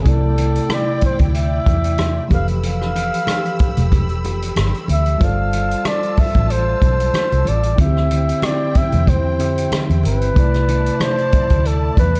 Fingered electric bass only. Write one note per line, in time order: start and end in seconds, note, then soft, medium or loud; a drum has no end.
0.06 0.58 C2 medium
1.02 muted fingered electric bass stroke soft
1.20 1.58 D2 medium
1.67 2.19 E2 medium
2.31 3.10 F1 medium
3.60 muted fingered electric bass stroke soft
3.78 4.25 E1 medium
4.25 4.51 F1 medium
4.57 4.71 G1 medium
4.89 5.15 D2 medium
5.21 5.73 G1 loud
6.18 muted fingered electric bass stroke soft
6.35 6.73 A1 medium
6.82 7.08 B1 medium
7.32 7.44 C2 medium
7.48 7.73 A1 medium
7.79 8.31 D2 medium
8.76 muted fingered electric bass stroke soft
8.93 9.40 E2 medium
9.40 9.66 F2 medium
9.90 10.02 E2 medium
10.04 10.30 G1 medium
10.37 10.89 C2 medium
11.33 muted fingered electric bass stroke soft
11.51 11.89 D2 medium
11.97 12.20 E2 medium